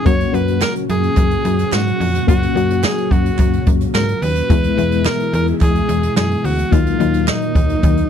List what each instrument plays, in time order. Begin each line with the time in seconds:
Already playing: string machine C#4
0.05 fm bass F#2, string machine A#2 C#3 F#3 F#4, fm electric piano A#3 C#4 F#4, alto saxophone C#5, kick, closed hi-hat
0.20 closed hi-hat
0.33 fm bass F#2, fm electric piano A#3 C#4 F#4, alto saxophone B4, closed hi-hat
0.48 closed hi-hat
0.61 alto saxophone A#4, snare, clap, tambourine
0.75 closed hi-hat
0.89 fm bass F#2, alto saxophone G#4, closed hi-hat
1.03 closed hi-hat
1.17 fm bass F#2, kick, clap, closed hi-hat
1.31 closed hi-hat
1.45 fm bass F#2, closed hi-hat
1.59 closed hi-hat
1.72 fm bass G#2, alto saxophone F#4, snare, clap, tambourine
1.87 closed hi-hat
2.00 fm bass F2, open hi-hat
2.15 closed hi-hat
2.27 fm bass F#2, fm electric piano A#3 C#4 F#4, alto saxophone F#4, kick, closed hi-hat
2.43 closed hi-hat
2.55 fm bass F#2, fm electric piano A#3 C#4 F#4, closed hi-hat
2.70 closed hi-hat
2.83 alto saxophone G#4, snare, clap, tambourine
2.98 closed hi-hat
3.11 fm bass F#2, alto saxophone F#4, kick, closed hi-hat
3.26 closed hi-hat
3.38 fm bass F#2, kick, clap, closed hi-hat
3.53 closed hi-hat
3.66 fm bass F#2, kick, closed hi-hat
3.81 closed hi-hat
3.94 fm bass G#2, alto saxophone A#4, snare, clap, tambourine
4.08 closed hi-hat
4.22 fm bass D#2, alto saxophone B4, open hi-hat
4.36 closed hi-hat
4.50 fm bass E2, string machine B2 E3 G#3 E4 G#4, fm electric piano G#3 B3 E4, kick, closed hi-hat
4.64 closed hi-hat
4.78 fm bass E2, fm electric piano G#3 B3 E4, closed hi-hat
4.92 closed hi-hat
5.05 alto saxophone A#4, snare, clap, tambourine
5.20 closed hi-hat
5.33 fm bass E2, alto saxophone A#4, closed hi-hat
5.47 closed hi-hat
5.61 fm bass E2, alto saxophone G#4, kick, clap, closed hi-hat
5.75 closed hi-hat
5.89 fm bass E2, closed hi-hat
6.03 closed hi-hat
6.16 fm bass F#2, alto saxophone G#4, snare, clap, tambourine
6.31 closed hi-hat
6.44 fm bass D2, alto saxophone F#4, open hi-hat
6.58 closed hi-hat
6.71 fm bass D#2, string machine A#2 D#3 F#3 D#4 A#4, fm electric piano F#3 A#3 D#4, alto saxophone F4, kick, closed hi-hat
6.87 closed hi-hat
6.99 fm bass D#2, fm electric piano F#3 A#3 D#4, closed hi-hat
7.14 closed hi-hat
7.27 alto saxophone D#4, snare, clap, tambourine
7.42 closed hi-hat
7.55 fm bass D#2, kick, closed hi-hat
7.69 closed hi-hat
7.83 fm bass D#2, kick, clap, closed hi-hat
7.97 closed hi-hat